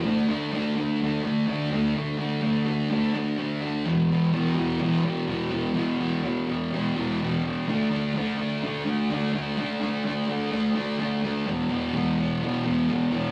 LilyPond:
\new Staff \with { instrumentName = "Distorted electric guitar" } { \clef bass \time 4/4 \key e \mixolydian \tempo 4 = 126 <d a d'>8 <a d'>8 <d a d'>8 <a d'>8 <d a d'>8 <d a d'>8 <d a d'>8 <a d'>8 | <d a d'>8 <a d'>8 <d a d'>8 <a d'>8 <d a d'>8 <d a d'>8 <d a d'>8 <a d'>8 | <e, b, e>8 <b, e>8 <e, b, e>8 <b, e>8 <e, b, e>8 <e, b, e>8 <e, b, e>8 <b, e>8 | <e, b, e>8 <b, e>8 <e, b, e>8 <b, e>8 <e, b, e>8 <e, b, e>8 <e, b, e>8 <b, e>8 |
<d a d'>8 <a d'>8 <d a d'>8 <a d'>8 <d a d'>8 <d a d'>8 <d a d'>8 <a d'>8 | <d a d'>8 <a d'>8 <d a d'>8 <a d'>8 <d a d'>8 <d a d'>8 <d a d'>8 <a d'>8 | <e, b, e>8 <b, e>8 <e, b, e>8 <b, e>8 <e, b, e>8 <e, b, e>8 <e, b, e>8 <b, e>8 | }